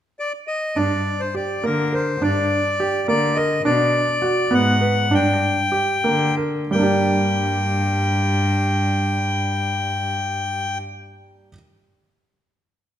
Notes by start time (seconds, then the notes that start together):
0.20 D5
0.47 D#5
0.76 G2 D4 D5
1.20 C5
1.35 G4 D5
1.63 D3 A#3 A#4
1.93 A#4 C5
2.21 G2 D4 D5
2.80 G4
3.07 D3 A#3 D5
3.35 A#4 D#5
3.64 B2 D4 D5
4.22 F#4
4.51 G#2 B3 F#5
4.81 B4
5.10 G2 D4
5.14 G5
5.72 G4
6.04 D3 A#3
6.37 A#4
6.71 G2 G3 A#3 G5
6.79 D4 G4